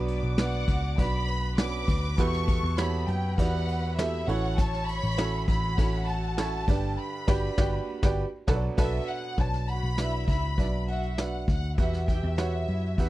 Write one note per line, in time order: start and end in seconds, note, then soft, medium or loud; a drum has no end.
0.00 0.20 B1 loud
0.00 0.64 B2 medium
0.00 0.64 F#3 medium
0.00 0.30 B3 loud
0.00 0.31 D4 loud
0.00 0.31 F#4 loud
0.00 0.34 B4 loud
0.00 1.25 D5 medium
0.00 1.25 D6 loud
0.08 ride medium
0.23 0.65 B1 medium
0.38 0.91 B3 medium
0.38 0.91 D4 medium
0.38 0.91 F#4 medium
0.38 0.91 B4 medium
0.38 0.95 F#5 loud
0.38 snare loud
0.38 ride medium
0.68 0.96 C#2 medium
0.68 kick loud
0.68 ride medium
0.97 1.84 B1 loud
0.97 1.50 B3 medium
0.97 1.51 D4 medium
0.97 1.51 F#4 medium
0.97 1.51 B4 medium
0.97 1.54 B5 loud
0.97 kick medium
0.97 ride medium
1.28 2.16 B4 medium
1.28 2.16 B5 loud
1.28 ride medium
1.58 2.10 B3 medium
1.58 2.11 C#4 medium
1.58 2.11 D4 medium
1.58 2.11 F#4 medium
1.58 2.11 B4 medium
1.58 2.18 D6 loud
1.58 snare loud
1.58 ride medium
1.88 2.16 D2 medium
1.88 kick loud
1.88 open hi-hat medium
1.88 ride medium
2.18 2.60 E2 loud
2.18 3.05 B2 medium
2.18 2.71 B3 loud
2.18 2.71 E4 medium
2.18 2.71 F#4 medium
2.18 2.71 G4 medium
2.18 3.06 A4 medium
2.18 2.71 B4 loud
2.18 3.07 A5 medium
2.18 2.78 C#6 loud
2.18 kick loud
2.18 hi-hat pedal medium
2.18 ride medium
2.33 snare soft
2.48 kick loud
2.48 ride medium
2.63 3.05 E2 loud
2.78 3.31 B3 medium
2.78 3.31 E4 medium
2.78 3.31 F#4 medium
2.78 3.31 G4 medium
2.78 3.31 C#5 medium
2.78 3.08 B5 loud
2.78 snare loud
2.78 ride medium
3.08 3.36 F#2 medium
3.08 4.26 B4 medium
3.08 3.38 G5 loud
3.08 4.26 B5 loud
3.08 ride medium
3.38 4.24 E2 loud
3.38 3.90 B3 medium
3.38 3.91 E4 medium
3.38 3.91 F#4 medium
3.38 3.91 G4 medium
3.38 3.91 D5 medium
3.38 3.94 F#5 loud
3.38 kick medium
3.38 ride medium
3.68 ride medium
3.98 4.28 B3 medium
3.98 4.27 E4 medium
3.98 4.27 F#4 medium
3.98 4.29 G4 medium
3.98 4.28 A4 medium
3.98 4.28 E5 loud
3.98 snare loud
3.98 ride medium
4.28 4.99 A1 loud
4.28 5.15 A2 medium
4.28 5.15 E3 medium
4.28 5.07 C#4 medium
4.28 5.07 E4 medium
4.28 5.07 F#4 medium
4.28 5.07 A4 medium
4.28 5.46 C#5 medium
4.28 5.08 C#5 medium
4.28 4.58 F#5 loud
4.28 5.46 C#6 medium
4.28 open hi-hat medium
4.28 ride medium
4.57 4.88 A5 loud
4.57 kick loud
4.57 hi-hat pedal medium
4.57 ride medium
4.73 snare soft
4.87 5.47 B5 loud
4.87 ride medium
5.04 5.45 A1 medium
5.17 5.70 C#4 medium
5.17 5.71 E4 medium
5.17 5.71 F#4 medium
5.17 5.71 A4 medium
5.17 5.71 C#5 loud
5.17 snare loud
5.17 ride medium
5.48 5.76 A1 medium
5.48 6.66 F#4 medium
5.48 6.66 F#5 loud
5.48 6.04 B5 loud
5.48 kick loud
5.48 ride medium
5.78 6.64 A1 loud
5.78 6.30 C#4 medium
5.78 6.30 E4 medium
5.78 6.31 F#4 medium
5.78 6.31 A4 medium
5.78 6.31 C#5 medium
5.78 kick loud
5.78 ride medium
6.08 6.98 A5 loud
6.08 ride medium
6.37 6.68 C#4 medium
6.37 6.68 E4 medium
6.37 6.68 F#4 medium
6.37 6.68 A4 medium
6.37 6.68 C#5 medium
6.37 snare loud
6.37 ride medium
6.68 6.96 G1 loud
6.68 6.97 G2 medium
6.68 6.96 D3 medium
6.68 6.98 D4 medium
6.68 6.98 G4 medium
6.68 6.99 B4 medium
6.68 6.99 D5 medium
6.68 6.98 G5 medium
6.68 kick loud
6.68 open hi-hat medium
6.68 ride medium
6.98 8.18 B5 loud
7.28 7.48 G1 loud
7.28 7.48 D4 loud
7.28 7.49 F#4 loud
7.28 7.49 G4 loud
7.28 7.49 B4 loud
7.28 7.49 D5 loud
7.28 7.49 G5 loud
7.28 kick loud
7.28 snare loud
7.28 crash medium
7.58 7.78 G1 loud
7.58 7.78 D4 loud
7.58 7.78 F#4 loud
7.58 7.79 G4 loud
7.58 7.79 B4 loud
7.58 7.79 D5 loud
7.58 7.79 G5 loud
7.58 kick loud
7.58 snare loud
8.03 8.23 G1 loud
8.03 8.23 D4 loud
8.03 8.24 F#4 loud
8.03 8.24 G4 loud
8.03 8.24 B4 loud
8.03 8.24 D5 loud
8.03 8.23 G5 loud
8.03 kick loud
8.03 snare loud
8.47 8.68 B1 loud
8.47 8.69 B2 medium
8.47 8.69 F#3 medium
8.47 8.68 D4 medium
8.47 8.68 F#4 loud
8.47 8.68 A4 loud
8.47 8.69 A4 medium
8.47 8.69 B4 loud
8.47 8.68 A5 medium
8.47 kick loud
8.47 snare loud
8.55 8.73 D5 medium
8.77 8.99 B1 loud
8.77 8.98 D4 loud
8.77 8.98 F#4 loud
8.77 8.98 A4 loud
8.77 8.99 B4 loud
8.77 9.07 E5 loud
8.77 8.98 A5 loud
8.77 kick loud
8.77 snare loud
8.77 crash medium
9.08 9.38 F#5 loud
9.38 9.80 B1 loud
9.38 9.91 D4 medium
9.38 9.91 F#4 medium
9.38 9.91 B4 medium
9.38 9.91 C#5 medium
9.38 9.68 A5 loud
9.38 kick loud
9.38 closed hi-hat medium
9.53 snare soft
9.68 9.92 F#4 medium
9.68 9.92 F#5 medium
9.68 10.28 B5 loud
9.68 closed hi-hat medium
9.83 10.25 B1 medium
9.98 10.50 D4 medium
9.98 10.54 E4 loud
9.98 10.51 F#4 medium
9.98 10.51 B4 medium
9.98 10.54 E5 loud
9.98 10.51 E5 medium
9.98 snare loud
9.98 closed hi-hat medium
10.28 10.56 C#2 medium
10.28 10.85 B5 loud
10.28 kick medium
10.28 closed hi-hat medium
10.58 11.44 B1 loud
10.58 11.10 D4 medium
10.58 10.82 D4 medium
10.58 11.11 F#4 medium
10.58 11.11 B4 medium
10.58 10.82 D5 medium
10.58 11.11 E5 medium
10.58 kick medium
10.58 closed hi-hat medium
10.88 11.12 F#4 loud
10.88 11.19 E5 medium
10.88 11.12 F#5 loud
10.88 closed hi-hat medium
11.03 closed hi-hat medium
11.18 11.70 D4 medium
11.18 11.71 F#4 medium
11.18 11.71 B4 medium
11.18 11.71 E5 medium
11.18 11.48 F#5 medium
11.18 snare loud
11.18 closed hi-hat medium
11.48 11.76 D2 medium
11.48 11.76 F#5 loud
11.48 kick loud
11.48 open hi-hat medium
11.63 closed hi-hat medium
11.78 12.20 E2 loud
11.78 12.65 B2 medium
11.78 12.02 F#4 medium
11.78 12.31 F#4 medium
11.78 12.31 G4 medium
11.78 12.31 B4 medium
11.78 13.09 E5 medium
11.78 12.31 E5 medium
11.78 12.02 F#5 loud
11.78 kick loud
11.78 closed hi-hat medium
11.93 snare soft
12.08 12.32 G4 medium
12.08 12.32 G5 loud
12.08 kick medium
12.08 closed hi-hat medium
12.24 12.65 E2 medium
12.38 12.90 F#4 medium
12.38 12.62 F#4 medium
12.38 12.91 G4 medium
12.38 12.91 B4 medium
12.38 12.91 C#5 medium
12.38 12.62 F#5 medium
12.38 snare loud
12.38 closed hi-hat medium
12.68 12.96 F#2 medium
12.68 12.92 E4 medium
12.68 12.92 E5 medium
12.68 closed hi-hat medium
12.98 13.09 E2 loud
12.98 13.09 F#4 medium
12.98 13.09 G4 medium
12.98 13.09 B4 medium
12.98 13.09 E5 medium
12.98 13.09 F#5 medium
12.98 kick medium
12.98 closed hi-hat medium